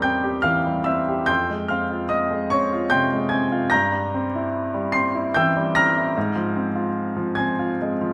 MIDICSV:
0, 0, Header, 1, 2, 480
1, 0, Start_track
1, 0, Key_signature, -4, "minor"
1, 0, Tempo, 816327
1, 756, Time_signature, 3, 2, 24, 8
1, 4781, End_track
2, 0, Start_track
2, 0, Title_t, "Grand piano"
2, 0, Program_c, 0, 0
2, 0, Control_c, 0, 64, 127
2, 0, Note_on_c, 0, 40, 49
2, 0, Note_on_c, 0, 55, 42
2, 0, Note_on_c, 0, 60, 36
2, 0, Note_on_c, 0, 67, 37
2, 0, Note_on_c, 0, 70, 48
2, 0, Note_on_c, 0, 72, 56
2, 0, Note_on_c, 0, 79, 54
2, 0, Note_on_c, 0, 82, 69
2, 0, Note_on_c, 0, 84, 71
2, 13, Note_on_c, 0, 91, 76
2, 21, Note_off_c, 0, 79, 0
2, 21, Note_on_c, 0, 79, 59
2, 24, Note_off_c, 0, 60, 0
2, 24, Note_on_c, 0, 60, 43
2, 102, Note_off_c, 0, 55, 0
2, 140, Note_off_c, 0, 67, 0
2, 140, Note_on_c, 0, 67, 46
2, 220, Note_off_c, 0, 60, 0
2, 247, Note_on_c, 0, 89, 76
2, 250, Note_off_c, 0, 79, 0
2, 252, Note_on_c, 0, 77, 59
2, 259, Note_on_c, 0, 52, 39
2, 263, Note_off_c, 0, 91, 0
2, 339, Note_off_c, 0, 67, 0
2, 388, Note_on_c, 0, 55, 39
2, 459, Note_off_c, 0, 52, 0
2, 486, Note_off_c, 0, 77, 0
2, 495, Note_on_c, 0, 88, 73
2, 502, Note_off_c, 0, 89, 0
2, 505, Note_on_c, 0, 76, 54
2, 508, Note_on_c, 0, 60, 39
2, 584, Note_off_c, 0, 55, 0
2, 637, Note_on_c, 0, 67, 42
2, 705, Note_off_c, 0, 60, 0
2, 735, Note_off_c, 0, 76, 0
2, 737, Note_off_c, 0, 40, 0
2, 742, Note_on_c, 0, 91, 86
2, 747, Note_off_c, 0, 84, 0
2, 747, Note_off_c, 0, 88, 0
2, 747, Note_on_c, 0, 84, 57
2, 750, Note_on_c, 0, 79, 63
2, 756, Note_on_c, 0, 41, 51
2, 757, Note_off_c, 0, 67, 0
2, 768, Control_c, 0, 64, 0
2, 769, Note_off_c, 0, 70, 0
2, 771, Note_off_c, 0, 82, 0
2, 772, Note_off_c, 0, 72, 0
2, 871, Control_c, 0, 64, 127
2, 880, Note_on_c, 0, 56, 37
2, 976, Note_off_c, 0, 84, 0
2, 978, Note_off_c, 0, 79, 0
2, 990, Note_on_c, 0, 89, 57
2, 991, Note_off_c, 0, 91, 0
2, 1000, Note_on_c, 0, 77, 44
2, 1002, Note_on_c, 0, 60, 41
2, 1071, Note_off_c, 0, 56, 0
2, 1122, Note_on_c, 0, 65, 41
2, 1192, Note_off_c, 0, 60, 0
2, 1222, Note_off_c, 0, 77, 0
2, 1228, Note_on_c, 0, 87, 76
2, 1233, Note_on_c, 0, 75, 59
2, 1234, Note_off_c, 0, 89, 0
2, 1357, Note_on_c, 0, 56, 39
2, 1457, Note_off_c, 0, 75, 0
2, 1471, Note_off_c, 0, 87, 0
2, 1472, Note_on_c, 0, 85, 83
2, 1478, Note_on_c, 0, 73, 59
2, 1483, Note_on_c, 0, 60, 48
2, 1502, Note_off_c, 0, 65, 0
2, 1547, Note_off_c, 0, 56, 0
2, 1602, Note_on_c, 0, 65, 44
2, 1669, Note_off_c, 0, 60, 0
2, 1697, Note_off_c, 0, 73, 0
2, 1704, Note_on_c, 0, 91, 88
2, 1710, Note_on_c, 0, 79, 65
2, 1711, Note_off_c, 0, 85, 0
2, 1711, Note_on_c, 0, 84, 60
2, 1717, Note_on_c, 0, 48, 44
2, 1787, Note_off_c, 0, 65, 0
2, 1841, Note_on_c, 0, 56, 39
2, 1904, Note_off_c, 0, 48, 0
2, 1931, Note_off_c, 0, 79, 0
2, 1931, Note_off_c, 0, 84, 0
2, 1934, Note_on_c, 0, 92, 67
2, 1940, Note_on_c, 0, 80, 54
2, 1944, Note_off_c, 0, 91, 0
2, 1953, Note_on_c, 0, 60, 45
2, 2025, Note_off_c, 0, 56, 0
2, 2069, Note_on_c, 0, 65, 50
2, 2139, Note_off_c, 0, 60, 0
2, 2160, Note_off_c, 0, 41, 0
2, 2163, Note_off_c, 0, 80, 0
2, 2174, Note_on_c, 0, 94, 83
2, 2176, Note_off_c, 0, 92, 0
2, 2180, Note_on_c, 0, 91, 64
2, 2184, Note_on_c, 0, 82, 66
2, 2185, Note_off_c, 0, 65, 0
2, 2189, Note_on_c, 0, 43, 59
2, 2192, Control_c, 0, 64, 0
2, 2294, Control_c, 0, 64, 127
2, 2304, Note_on_c, 0, 55, 38
2, 2437, Note_on_c, 0, 60, 44
2, 2492, Note_off_c, 0, 55, 0
2, 2560, Note_on_c, 0, 64, 45
2, 2619, Note_off_c, 0, 60, 0
2, 2788, Note_on_c, 0, 55, 43
2, 2876, Note_off_c, 0, 91, 0
2, 2878, Note_off_c, 0, 82, 0
2, 2895, Note_on_c, 0, 96, 84
2, 2897, Note_off_c, 0, 94, 0
2, 2902, Note_on_c, 0, 84, 64
2, 2909, Note_on_c, 0, 60, 45
2, 2937, Note_off_c, 0, 64, 0
2, 2979, Note_off_c, 0, 55, 0
2, 3028, Note_on_c, 0, 64, 49
2, 3101, Note_off_c, 0, 60, 0
2, 3129, Note_off_c, 0, 84, 0
2, 3142, Note_off_c, 0, 96, 0
2, 3142, Note_on_c, 0, 91, 83
2, 3151, Note_on_c, 0, 79, 65
2, 3155, Note_on_c, 0, 88, 63
2, 3157, Note_on_c, 0, 52, 46
2, 3220, Note_off_c, 0, 64, 0
2, 3273, Note_on_c, 0, 55, 46
2, 3344, Note_off_c, 0, 52, 0
2, 3372, Note_off_c, 0, 79, 0
2, 3374, Note_off_c, 0, 88, 0
2, 3381, Note_on_c, 0, 94, 96
2, 3384, Note_off_c, 0, 91, 0
2, 3386, Note_on_c, 0, 82, 65
2, 3388, Note_on_c, 0, 89, 68
2, 3398, Note_on_c, 0, 60, 50
2, 3460, Note_off_c, 0, 55, 0
2, 3512, Note_on_c, 0, 64, 49
2, 3580, Note_off_c, 0, 60, 0
2, 3600, Note_off_c, 0, 43, 0
2, 3625, Note_off_c, 0, 64, 0
2, 3629, Control_c, 0, 64, 0
2, 3629, Note_on_c, 0, 44, 59
2, 3706, Control_c, 0, 64, 127
2, 3737, Note_on_c, 0, 53, 44
2, 3857, Note_on_c, 0, 60, 44
2, 3927, Note_off_c, 0, 53, 0
2, 3970, Note_on_c, 0, 65, 42
2, 4047, Note_off_c, 0, 60, 0
2, 4214, Note_on_c, 0, 53, 44
2, 4313, Note_off_c, 0, 82, 0
2, 4313, Note_off_c, 0, 89, 0
2, 4323, Note_on_c, 0, 92, 69
2, 4332, Note_on_c, 0, 80, 51
2, 4333, Note_off_c, 0, 94, 0
2, 4342, Note_on_c, 0, 60, 49
2, 4357, Note_off_c, 0, 65, 0
2, 4408, Note_off_c, 0, 53, 0
2, 4464, Note_on_c, 0, 65, 48
2, 4534, Note_off_c, 0, 60, 0
2, 4561, Note_off_c, 0, 80, 0
2, 4573, Note_off_c, 0, 92, 0
2, 4595, Note_on_c, 0, 56, 47
2, 4657, Note_off_c, 0, 65, 0
2, 4713, Note_on_c, 0, 53, 42
2, 4781, Note_off_c, 0, 44, 0
2, 4781, Note_off_c, 0, 53, 0
2, 4781, Note_off_c, 0, 56, 0
2, 4781, End_track
0, 0, End_of_file